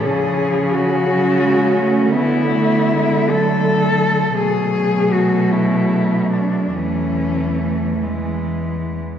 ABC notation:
X:1
M:6/8
L:1/8
Q:3/8=53
K:Bdor
V:1 name="Cello"
G2 F4 | E3 A3 | G2 F E2 D | C3 z3 |]
V:2 name="Cello"
C3 C3 | B,3 A,3 | A,6 | A,3 G,2 z |]
V:3 name="Cello" clef=bass
^E,3 F, G, A, | B, A, G, F,3 | F,6 | E,3 E,2 z |]
V:4 name="Cello" clef=bass
C,6 | D,6 | B,,6 | E,,4- E,, z |]